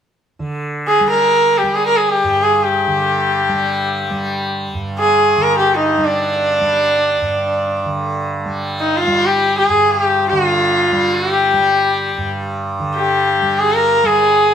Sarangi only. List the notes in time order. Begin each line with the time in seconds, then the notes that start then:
0.87 G#4
1.10 A#4
1.58 G4
1.75 G#4
1.87 A#4
1.96 G#4
2.10 G4
2.42 G#4
2.54 G#4
2.63 G4
4.99 G#4
5.42 A#4
5.58 G4
5.76 D#4
6.05 D4
8.80 D#4
8.96 F4
9.25 G4
9.58 G#4
9.91 G#4
10.02 G4
10.30 F4
11.15 F#4
11.30 G4
12.95 G4
13.59 G#4
13.74 A#4
14.06 G#4